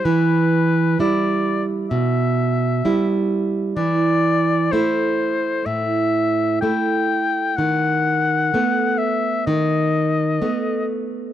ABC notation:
X:1
M:4/4
L:1/8
Q:1/4=64
K:Em
V:1 name="Oboe"
B2 d z e3 z | d2 c2 e2 g2 | f3 e ^d3 z |]
V:2 name="Nylon-string guitar"
E,2 [G,E]2 B,,2 [G,E]2 | E,2 [A,E]2 A,,2 [A,E]2 | ^D,2 [A,B,]2 D,2 [A,B,]2 |]